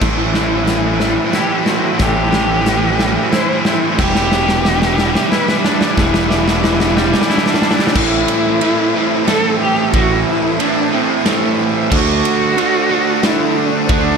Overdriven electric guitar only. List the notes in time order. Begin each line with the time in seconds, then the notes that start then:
0.02 A2 E3
0.10 A2 E3
0.18 A2 E3
0.24 A2 E3
0.33 A2 E3
0.40 A2 E3
0.48 A2 E3
0.55 A2 E3
0.63 A2 E3
0.70 A2 E3
0.77 A2 E3
0.85 A2 E3
0.93 A2 E3
1.00 A2 E3
1.09 A2 E3
1.16 A2 E3
1.24 A2 E3
1.31 A2 E3
1.39 A2 E3
1.45 A2 E3
1.54 A2 E3
1.62 A2 E3
1.69 A2 E3
1.77 A2 E3
1.84 A2 E3
1.92 A2 E3
2.01 A2 E3
2.09 A2 E3
2.16 A2 E3
2.24 A2 E3
2.30 A2 E3
2.39 A2 E3
2.47 A2 E3
2.54 A2 E3
2.61 A2 E3
2.69 A2 E3
2.77 A2 E3
2.84 A2 E3
2.92 A2 E3
3.00 A2 E3
3.07 A2 E3
3.14 A2 E3
3.23 A2 E3
3.29 A2 E3
3.38 A2 E3
3.45 A2 E3
3.53 A2 E3
3.60 A2 E3
3.67 A2 E3
3.75 A2 E3
3.84 A2 E3
3.91 A2 E3
4.00 E3 G3
4.07 E3 G3
4.15 E3 G3
4.23 E3 G3
4.31 E3 G3
4.37 E3 G3
4.45 E3 G3
4.54 E3 G3
4.60 E3 G3
4.68 E3 G3
4.75 E3 G3
4.83 E3 G3
4.90 E3 G3
4.98 E3 G3
5.06 E3 G3
5.14 E3 G3
5.21 E3 G3
5.29 E3 G3
5.35 E3 G3
5.44 E3 G3
5.52 E3 G3
5.59 E3 G3
5.66 E3 G3
5.74 E3 G3
5.82 E3 G3
5.89 E3 G3
5.98 E3 G3
6.05 E3 G3
6.13 E3 G3
6.20 E3 G3
6.28 E3 G3
6.36 E3 G3
6.43 E3 G3
6.50 E3 G3
6.58 E3 G3
6.66 E3 G3
6.74 E3 G3
6.81 E3 G3
6.89 E3 G3
6.96 E3 G3
7.04 E3 G3
7.12 E3 G3
7.19 E3 G3
7.26 E3 G3
7.35 E3 G3
7.41 E3 G3
7.49 E3 G3
7.58 E3 G3
7.65 E3 G3
7.72 E3 G3
7.79 E3 G3
7.88 E3 G3
7.95 A2 E3 A3
8.61 A2 E3 A3
8.95 A2 E3 A3
9.27 A2 E3 A3
9.94 A2 E3 A3
10.59 A2 E3 A3
10.92 A2 E3 A3
11.25 A2 E3 A3
11.91 D3 A3 D4
12.57 D3 A3 D4
12.90 D3 A3 D4
13.24 D3 A3 D4
13.89 D3 A3 D4